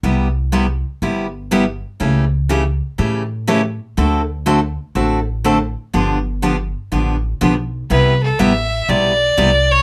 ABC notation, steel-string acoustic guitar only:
X:1
M:4/4
L:1/8
Q:"Swing" 1/4=122
K:C
V:1 name="Steel-string acoustic guitar"
[C,G,B,EG] z [C,G,B,EG] z [C,G,B,EG] z [C,G,B,EG] z | [^C,E,A,^CG] z [C,E,A,CG] z [C,E,A,CG] z [C,E,A,CG] z | [D,A,C^FA] z [D,A,CFA] z [D,A,CFA] z [D,A,CFA] z | [D,F,B,DG] z [D,F,B,DG] z [D,F,B,DG] z [D,F,B,DG] z |
[C,G,B,EG] z [C,G,B,EG] z [C,G,B,EG] z [C,G,B,EG] z |]